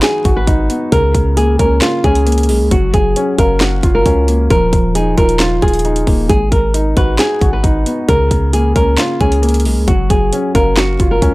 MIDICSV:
0, 0, Header, 1, 5, 480
1, 0, Start_track
1, 0, Tempo, 447761
1, 988, Time_signature, 4, 2, 24, 8
1, 12160, End_track
2, 0, Start_track
2, 0, Title_t, "Nylon-string guitar"
2, 0, Program_c, 0, 24
2, 29, Note_on_c, 0, 68, 90
2, 367, Note_off_c, 0, 68, 0
2, 391, Note_on_c, 0, 71, 84
2, 954, Note_off_c, 0, 71, 0
2, 987, Note_on_c, 0, 70, 110
2, 1439, Note_off_c, 0, 70, 0
2, 1467, Note_on_c, 0, 68, 75
2, 1693, Note_off_c, 0, 68, 0
2, 1708, Note_on_c, 0, 70, 81
2, 1933, Note_off_c, 0, 70, 0
2, 1955, Note_on_c, 0, 65, 86
2, 2177, Note_off_c, 0, 65, 0
2, 2188, Note_on_c, 0, 68, 88
2, 2866, Note_off_c, 0, 68, 0
2, 2908, Note_on_c, 0, 66, 82
2, 3133, Note_off_c, 0, 66, 0
2, 3147, Note_on_c, 0, 68, 76
2, 3599, Note_off_c, 0, 68, 0
2, 3629, Note_on_c, 0, 70, 88
2, 3854, Note_off_c, 0, 70, 0
2, 3871, Note_on_c, 0, 66, 87
2, 4208, Note_off_c, 0, 66, 0
2, 4231, Note_on_c, 0, 70, 82
2, 4794, Note_off_c, 0, 70, 0
2, 4829, Note_on_c, 0, 70, 102
2, 5280, Note_off_c, 0, 70, 0
2, 5308, Note_on_c, 0, 68, 74
2, 5533, Note_off_c, 0, 68, 0
2, 5552, Note_on_c, 0, 70, 84
2, 5776, Note_off_c, 0, 70, 0
2, 5793, Note_on_c, 0, 65, 81
2, 6016, Note_off_c, 0, 65, 0
2, 6028, Note_on_c, 0, 68, 78
2, 6706, Note_off_c, 0, 68, 0
2, 6746, Note_on_c, 0, 68, 84
2, 6972, Note_off_c, 0, 68, 0
2, 6989, Note_on_c, 0, 70, 77
2, 7440, Note_off_c, 0, 70, 0
2, 7471, Note_on_c, 0, 71, 88
2, 7695, Note_off_c, 0, 71, 0
2, 7708, Note_on_c, 0, 68, 89
2, 8047, Note_off_c, 0, 68, 0
2, 8072, Note_on_c, 0, 71, 84
2, 8634, Note_off_c, 0, 71, 0
2, 8667, Note_on_c, 0, 70, 113
2, 9119, Note_off_c, 0, 70, 0
2, 9147, Note_on_c, 0, 68, 77
2, 9373, Note_off_c, 0, 68, 0
2, 9388, Note_on_c, 0, 70, 81
2, 9613, Note_off_c, 0, 70, 0
2, 9634, Note_on_c, 0, 65, 85
2, 9857, Note_off_c, 0, 65, 0
2, 9867, Note_on_c, 0, 68, 87
2, 10545, Note_off_c, 0, 68, 0
2, 10588, Note_on_c, 0, 66, 79
2, 10813, Note_off_c, 0, 66, 0
2, 10827, Note_on_c, 0, 68, 76
2, 11279, Note_off_c, 0, 68, 0
2, 11310, Note_on_c, 0, 70, 85
2, 11534, Note_off_c, 0, 70, 0
2, 11550, Note_on_c, 0, 66, 87
2, 11888, Note_off_c, 0, 66, 0
2, 11911, Note_on_c, 0, 70, 82
2, 12160, Note_off_c, 0, 70, 0
2, 12160, End_track
3, 0, Start_track
3, 0, Title_t, "Felt piano"
3, 0, Program_c, 1, 0
3, 0, Control_c, 1, 64, 127
3, 0, Note_on_c, 1, 56, 88
3, 0, Note_on_c, 1, 63, 86
3, 0, Note_on_c, 1, 66, 82
3, 252, Note_off_c, 1, 66, 0
3, 268, Note_on_c, 1, 66, 90
3, 269, Note_off_c, 1, 56, 0
3, 488, Note_off_c, 1, 63, 0
3, 504, Note_on_c, 1, 63, 97
3, 749, Note_on_c, 1, 59, 75
3, 986, Note_off_c, 1, 63, 0
3, 988, Note_off_c, 1, 66, 0
3, 989, Note_off_c, 1, 59, 0
3, 991, Note_on_c, 1, 49, 98
3, 1004, Control_c, 1, 64, 0
3, 1164, Control_c, 1, 64, 127
3, 1467, Note_on_c, 1, 58, 89
3, 1707, Note_on_c, 1, 61, 81
3, 2182, Note_off_c, 1, 61, 0
3, 2190, Note_off_c, 1, 49, 0
3, 2198, Note_on_c, 1, 61, 88
3, 2402, Note_off_c, 1, 58, 0
3, 2418, Note_on_c, 1, 58, 89
3, 2671, Note_on_c, 1, 56, 88
3, 2904, Note_off_c, 1, 58, 0
3, 2908, Note_on_c, 1, 54, 92
3, 2910, Note_off_c, 1, 56, 0
3, 2913, Note_off_c, 1, 61, 0
3, 2923, Control_c, 1, 64, 0
3, 3080, Control_c, 1, 64, 127
3, 3393, Note_on_c, 1, 61, 91
3, 3632, Note_on_c, 1, 77, 79
3, 4108, Note_off_c, 1, 54, 0
3, 4115, Note_on_c, 1, 65, 84
3, 4332, Note_off_c, 1, 61, 0
3, 4348, Note_on_c, 1, 61, 90
3, 4587, Note_on_c, 1, 58, 82
3, 4828, Note_off_c, 1, 58, 0
3, 4828, Note_off_c, 1, 61, 0
3, 4830, Note_off_c, 1, 77, 0
3, 4832, Note_off_c, 1, 65, 0
3, 4832, Note_on_c, 1, 53, 99
3, 4844, Control_c, 1, 64, 0
3, 5020, Control_c, 1, 64, 127
3, 5308, Note_on_c, 1, 63, 89
3, 5546, Note_on_c, 1, 65, 84
3, 6010, Note_off_c, 1, 65, 0
3, 6026, Note_on_c, 1, 65, 89
3, 6030, Note_off_c, 1, 53, 0
3, 6254, Note_off_c, 1, 63, 0
3, 6270, Note_on_c, 1, 63, 90
3, 6507, Note_on_c, 1, 58, 77
3, 6747, Note_off_c, 1, 65, 0
3, 6747, Note_on_c, 1, 56, 86
3, 6748, Note_off_c, 1, 58, 0
3, 6749, Note_off_c, 1, 63, 0
3, 6761, Control_c, 1, 64, 0
3, 6961, Control_c, 1, 64, 127
3, 7225, Note_on_c, 1, 63, 87
3, 7468, Note_on_c, 1, 66, 86
3, 7931, Note_off_c, 1, 66, 0
3, 7947, Note_on_c, 1, 66, 87
3, 7948, Note_off_c, 1, 56, 0
3, 8167, Note_off_c, 1, 63, 0
3, 8183, Note_on_c, 1, 63, 96
3, 8428, Note_on_c, 1, 59, 79
3, 8666, Note_off_c, 1, 63, 0
3, 8668, Note_off_c, 1, 59, 0
3, 8668, Note_off_c, 1, 66, 0
3, 8670, Note_on_c, 1, 49, 98
3, 8681, Control_c, 1, 64, 0
3, 8840, Control_c, 1, 64, 127
3, 9147, Note_on_c, 1, 58, 88
3, 9387, Note_on_c, 1, 61, 81
3, 9862, Note_off_c, 1, 61, 0
3, 9869, Note_off_c, 1, 49, 0
3, 9878, Note_on_c, 1, 61, 86
3, 10082, Note_off_c, 1, 58, 0
3, 10098, Note_on_c, 1, 58, 87
3, 10351, Note_on_c, 1, 56, 85
3, 10584, Note_off_c, 1, 58, 0
3, 10588, Note_on_c, 1, 54, 91
3, 10590, Note_off_c, 1, 56, 0
3, 10593, Note_off_c, 1, 61, 0
3, 10604, Control_c, 1, 64, 0
3, 10785, Control_c, 1, 64, 127
3, 11073, Note_on_c, 1, 61, 89
3, 11311, Note_on_c, 1, 77, 80
3, 11788, Note_off_c, 1, 54, 0
3, 11795, Note_on_c, 1, 65, 84
3, 12012, Note_off_c, 1, 61, 0
3, 12028, Note_on_c, 1, 61, 94
3, 12160, Note_off_c, 1, 61, 0
3, 12160, Note_off_c, 1, 65, 0
3, 12160, Note_off_c, 1, 77, 0
3, 12160, End_track
4, 0, Start_track
4, 0, Title_t, "808-style bass"
4, 0, Program_c, 2, 38
4, 269, Note_on_c, 2, 32, 104
4, 499, Note_off_c, 2, 32, 0
4, 509, Note_on_c, 2, 32, 106
4, 739, Note_off_c, 2, 32, 0
4, 989, Note_on_c, 2, 37, 109
4, 1219, Note_off_c, 2, 37, 0
4, 1228, Note_on_c, 2, 37, 107
4, 1689, Note_off_c, 2, 37, 0
4, 1709, Note_on_c, 2, 37, 107
4, 1939, Note_off_c, 2, 37, 0
4, 2188, Note_on_c, 2, 37, 105
4, 2669, Note_on_c, 2, 35, 102
4, 2685, Note_off_c, 2, 37, 0
4, 2789, Note_on_c, 2, 37, 98
4, 2805, Note_off_c, 2, 35, 0
4, 2903, Note_off_c, 2, 37, 0
4, 2909, Note_on_c, 2, 30, 110
4, 3139, Note_off_c, 2, 30, 0
4, 3148, Note_on_c, 2, 30, 106
4, 3379, Note_off_c, 2, 30, 0
4, 3629, Note_on_c, 2, 30, 108
4, 4090, Note_off_c, 2, 30, 0
4, 4108, Note_on_c, 2, 30, 103
4, 4339, Note_off_c, 2, 30, 0
4, 4349, Note_on_c, 2, 37, 109
4, 4810, Note_off_c, 2, 37, 0
4, 4829, Note_on_c, 2, 27, 112
4, 5059, Note_off_c, 2, 27, 0
4, 5068, Note_on_c, 2, 27, 107
4, 5529, Note_off_c, 2, 27, 0
4, 5549, Note_on_c, 2, 27, 106
4, 6010, Note_off_c, 2, 27, 0
4, 6029, Note_on_c, 2, 27, 103
4, 6489, Note_off_c, 2, 27, 0
4, 6509, Note_on_c, 2, 27, 105
4, 6739, Note_off_c, 2, 27, 0
4, 6749, Note_on_c, 2, 32, 112
4, 6979, Note_off_c, 2, 32, 0
4, 6988, Note_on_c, 2, 32, 105
4, 7449, Note_off_c, 2, 32, 0
4, 7469, Note_on_c, 2, 32, 103
4, 7699, Note_off_c, 2, 32, 0
4, 7948, Note_on_c, 2, 32, 100
4, 8179, Note_off_c, 2, 32, 0
4, 8188, Note_on_c, 2, 32, 107
4, 8419, Note_off_c, 2, 32, 0
4, 8669, Note_on_c, 2, 37, 114
4, 8899, Note_off_c, 2, 37, 0
4, 8908, Note_on_c, 2, 37, 105
4, 9369, Note_off_c, 2, 37, 0
4, 9388, Note_on_c, 2, 37, 104
4, 9619, Note_off_c, 2, 37, 0
4, 9868, Note_on_c, 2, 37, 105
4, 10349, Note_on_c, 2, 35, 100
4, 10365, Note_off_c, 2, 37, 0
4, 10469, Note_on_c, 2, 37, 94
4, 10485, Note_off_c, 2, 35, 0
4, 10583, Note_off_c, 2, 37, 0
4, 10589, Note_on_c, 2, 30, 112
4, 10819, Note_off_c, 2, 30, 0
4, 10828, Note_on_c, 2, 30, 105
4, 11059, Note_off_c, 2, 30, 0
4, 11309, Note_on_c, 2, 30, 106
4, 11770, Note_off_c, 2, 30, 0
4, 11789, Note_on_c, 2, 30, 106
4, 12019, Note_off_c, 2, 30, 0
4, 12029, Note_on_c, 2, 37, 106
4, 12160, Note_off_c, 2, 37, 0
4, 12160, End_track
5, 0, Start_track
5, 0, Title_t, "Drums"
5, 26, Note_on_c, 9, 39, 98
5, 29, Note_on_c, 9, 38, 119
5, 29, Note_on_c, 9, 42, 71
5, 134, Note_off_c, 9, 39, 0
5, 136, Note_off_c, 9, 38, 0
5, 136, Note_off_c, 9, 42, 0
5, 269, Note_on_c, 9, 36, 103
5, 269, Note_on_c, 9, 42, 63
5, 376, Note_off_c, 9, 36, 0
5, 376, Note_off_c, 9, 42, 0
5, 509, Note_on_c, 9, 36, 97
5, 509, Note_on_c, 9, 42, 75
5, 616, Note_off_c, 9, 36, 0
5, 616, Note_off_c, 9, 42, 0
5, 748, Note_on_c, 9, 42, 63
5, 855, Note_off_c, 9, 42, 0
5, 988, Note_on_c, 9, 42, 78
5, 989, Note_on_c, 9, 36, 117
5, 1096, Note_off_c, 9, 36, 0
5, 1096, Note_off_c, 9, 42, 0
5, 1228, Note_on_c, 9, 36, 102
5, 1229, Note_on_c, 9, 42, 76
5, 1335, Note_off_c, 9, 36, 0
5, 1336, Note_off_c, 9, 42, 0
5, 1469, Note_on_c, 9, 42, 85
5, 1576, Note_off_c, 9, 42, 0
5, 1709, Note_on_c, 9, 36, 105
5, 1709, Note_on_c, 9, 42, 77
5, 1816, Note_off_c, 9, 36, 0
5, 1816, Note_off_c, 9, 42, 0
5, 1946, Note_on_c, 9, 39, 98
5, 1949, Note_on_c, 9, 38, 121
5, 1949, Note_on_c, 9, 42, 71
5, 2053, Note_off_c, 9, 39, 0
5, 2056, Note_off_c, 9, 38, 0
5, 2056, Note_off_c, 9, 42, 0
5, 2188, Note_on_c, 9, 36, 98
5, 2189, Note_on_c, 9, 42, 40
5, 2296, Note_off_c, 9, 36, 0
5, 2296, Note_off_c, 9, 42, 0
5, 2309, Note_on_c, 9, 42, 68
5, 2416, Note_off_c, 9, 42, 0
5, 2429, Note_on_c, 9, 42, 60
5, 2489, Note_off_c, 9, 42, 0
5, 2489, Note_on_c, 9, 42, 61
5, 2549, Note_off_c, 9, 42, 0
5, 2549, Note_on_c, 9, 42, 55
5, 2609, Note_off_c, 9, 42, 0
5, 2609, Note_on_c, 9, 42, 58
5, 2668, Note_on_c, 9, 46, 66
5, 2716, Note_off_c, 9, 42, 0
5, 2776, Note_off_c, 9, 46, 0
5, 2909, Note_on_c, 9, 36, 116
5, 2909, Note_on_c, 9, 42, 82
5, 3016, Note_off_c, 9, 36, 0
5, 3016, Note_off_c, 9, 42, 0
5, 3148, Note_on_c, 9, 36, 101
5, 3149, Note_on_c, 9, 42, 70
5, 3255, Note_off_c, 9, 36, 0
5, 3256, Note_off_c, 9, 42, 0
5, 3389, Note_on_c, 9, 42, 84
5, 3496, Note_off_c, 9, 42, 0
5, 3629, Note_on_c, 9, 36, 111
5, 3629, Note_on_c, 9, 42, 76
5, 3736, Note_off_c, 9, 36, 0
5, 3736, Note_off_c, 9, 42, 0
5, 3866, Note_on_c, 9, 39, 95
5, 3869, Note_on_c, 9, 38, 127
5, 3869, Note_on_c, 9, 42, 71
5, 3974, Note_off_c, 9, 39, 0
5, 3976, Note_off_c, 9, 38, 0
5, 3976, Note_off_c, 9, 42, 0
5, 4109, Note_on_c, 9, 36, 103
5, 4109, Note_on_c, 9, 42, 67
5, 4216, Note_off_c, 9, 36, 0
5, 4216, Note_off_c, 9, 42, 0
5, 4349, Note_on_c, 9, 36, 96
5, 4349, Note_on_c, 9, 42, 76
5, 4456, Note_off_c, 9, 36, 0
5, 4456, Note_off_c, 9, 42, 0
5, 4589, Note_on_c, 9, 42, 63
5, 4696, Note_off_c, 9, 42, 0
5, 4829, Note_on_c, 9, 36, 116
5, 4829, Note_on_c, 9, 42, 79
5, 4936, Note_off_c, 9, 36, 0
5, 4936, Note_off_c, 9, 42, 0
5, 5068, Note_on_c, 9, 36, 104
5, 5069, Note_on_c, 9, 42, 77
5, 5176, Note_off_c, 9, 36, 0
5, 5176, Note_off_c, 9, 42, 0
5, 5309, Note_on_c, 9, 42, 85
5, 5416, Note_off_c, 9, 42, 0
5, 5548, Note_on_c, 9, 42, 63
5, 5549, Note_on_c, 9, 36, 110
5, 5656, Note_off_c, 9, 36, 0
5, 5656, Note_off_c, 9, 42, 0
5, 5669, Note_on_c, 9, 42, 64
5, 5776, Note_off_c, 9, 42, 0
5, 5786, Note_on_c, 9, 39, 99
5, 5788, Note_on_c, 9, 38, 122
5, 5788, Note_on_c, 9, 42, 73
5, 5893, Note_off_c, 9, 39, 0
5, 5896, Note_off_c, 9, 38, 0
5, 5896, Note_off_c, 9, 42, 0
5, 6028, Note_on_c, 9, 42, 39
5, 6029, Note_on_c, 9, 36, 100
5, 6089, Note_off_c, 9, 42, 0
5, 6089, Note_on_c, 9, 42, 50
5, 6136, Note_off_c, 9, 36, 0
5, 6148, Note_off_c, 9, 42, 0
5, 6148, Note_on_c, 9, 42, 60
5, 6208, Note_off_c, 9, 42, 0
5, 6208, Note_on_c, 9, 42, 65
5, 6268, Note_off_c, 9, 42, 0
5, 6268, Note_on_c, 9, 42, 42
5, 6375, Note_off_c, 9, 42, 0
5, 6388, Note_on_c, 9, 42, 72
5, 6495, Note_off_c, 9, 42, 0
5, 6508, Note_on_c, 9, 46, 69
5, 6509, Note_on_c, 9, 36, 103
5, 6616, Note_off_c, 9, 36, 0
5, 6616, Note_off_c, 9, 46, 0
5, 6749, Note_on_c, 9, 36, 115
5, 6749, Note_on_c, 9, 42, 80
5, 6856, Note_off_c, 9, 36, 0
5, 6856, Note_off_c, 9, 42, 0
5, 6988, Note_on_c, 9, 36, 102
5, 6988, Note_on_c, 9, 42, 70
5, 7095, Note_off_c, 9, 36, 0
5, 7096, Note_off_c, 9, 42, 0
5, 7229, Note_on_c, 9, 42, 85
5, 7336, Note_off_c, 9, 42, 0
5, 7469, Note_on_c, 9, 36, 109
5, 7469, Note_on_c, 9, 42, 75
5, 7576, Note_off_c, 9, 36, 0
5, 7576, Note_off_c, 9, 42, 0
5, 7706, Note_on_c, 9, 39, 102
5, 7709, Note_on_c, 9, 38, 121
5, 7709, Note_on_c, 9, 42, 71
5, 7813, Note_off_c, 9, 39, 0
5, 7816, Note_off_c, 9, 38, 0
5, 7816, Note_off_c, 9, 42, 0
5, 7948, Note_on_c, 9, 36, 102
5, 7948, Note_on_c, 9, 42, 68
5, 8056, Note_off_c, 9, 36, 0
5, 8056, Note_off_c, 9, 42, 0
5, 8188, Note_on_c, 9, 36, 96
5, 8188, Note_on_c, 9, 42, 75
5, 8295, Note_off_c, 9, 36, 0
5, 8295, Note_off_c, 9, 42, 0
5, 8428, Note_on_c, 9, 42, 65
5, 8535, Note_off_c, 9, 42, 0
5, 8668, Note_on_c, 9, 36, 111
5, 8668, Note_on_c, 9, 42, 84
5, 8775, Note_off_c, 9, 42, 0
5, 8776, Note_off_c, 9, 36, 0
5, 8908, Note_on_c, 9, 36, 101
5, 8908, Note_on_c, 9, 42, 77
5, 9015, Note_off_c, 9, 36, 0
5, 9015, Note_off_c, 9, 42, 0
5, 9148, Note_on_c, 9, 42, 84
5, 9255, Note_off_c, 9, 42, 0
5, 9388, Note_on_c, 9, 36, 106
5, 9388, Note_on_c, 9, 42, 75
5, 9495, Note_off_c, 9, 36, 0
5, 9495, Note_off_c, 9, 42, 0
5, 9626, Note_on_c, 9, 39, 102
5, 9629, Note_on_c, 9, 38, 127
5, 9629, Note_on_c, 9, 42, 71
5, 9733, Note_off_c, 9, 39, 0
5, 9736, Note_off_c, 9, 38, 0
5, 9736, Note_off_c, 9, 42, 0
5, 9868, Note_on_c, 9, 36, 96
5, 9868, Note_on_c, 9, 42, 41
5, 9976, Note_off_c, 9, 36, 0
5, 9976, Note_off_c, 9, 42, 0
5, 9989, Note_on_c, 9, 42, 66
5, 10096, Note_off_c, 9, 42, 0
5, 10109, Note_on_c, 9, 42, 57
5, 10169, Note_off_c, 9, 42, 0
5, 10169, Note_on_c, 9, 42, 57
5, 10229, Note_off_c, 9, 42, 0
5, 10229, Note_on_c, 9, 42, 55
5, 10289, Note_off_c, 9, 42, 0
5, 10289, Note_on_c, 9, 42, 57
5, 10349, Note_on_c, 9, 46, 69
5, 10396, Note_off_c, 9, 42, 0
5, 10456, Note_off_c, 9, 46, 0
5, 10589, Note_on_c, 9, 36, 113
5, 10589, Note_on_c, 9, 42, 85
5, 10696, Note_off_c, 9, 36, 0
5, 10696, Note_off_c, 9, 42, 0
5, 10828, Note_on_c, 9, 36, 100
5, 10829, Note_on_c, 9, 42, 74
5, 10936, Note_off_c, 9, 36, 0
5, 10936, Note_off_c, 9, 42, 0
5, 11069, Note_on_c, 9, 42, 81
5, 11176, Note_off_c, 9, 42, 0
5, 11309, Note_on_c, 9, 36, 110
5, 11309, Note_on_c, 9, 42, 78
5, 11416, Note_off_c, 9, 36, 0
5, 11416, Note_off_c, 9, 42, 0
5, 11546, Note_on_c, 9, 39, 100
5, 11549, Note_on_c, 9, 38, 124
5, 11549, Note_on_c, 9, 42, 73
5, 11653, Note_off_c, 9, 39, 0
5, 11656, Note_off_c, 9, 38, 0
5, 11656, Note_off_c, 9, 42, 0
5, 11789, Note_on_c, 9, 36, 99
5, 11789, Note_on_c, 9, 42, 66
5, 11896, Note_off_c, 9, 36, 0
5, 11896, Note_off_c, 9, 42, 0
5, 12029, Note_on_c, 9, 36, 96
5, 12029, Note_on_c, 9, 42, 73
5, 12136, Note_off_c, 9, 36, 0
5, 12137, Note_off_c, 9, 42, 0
5, 12160, End_track
0, 0, End_of_file